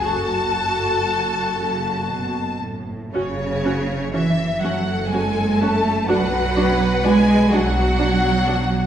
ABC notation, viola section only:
X:1
M:6/8
L:1/16
Q:3/8=40
K:F#m
V:1 name="Viola section"
F8- F z3 | [CF]2 [CF]2 [CF]2 [CF]2 [CF]2 [CF]2 | [DF]2 [DF]2 [DF]2 [DF]2 [DF]2 [DF]2 |]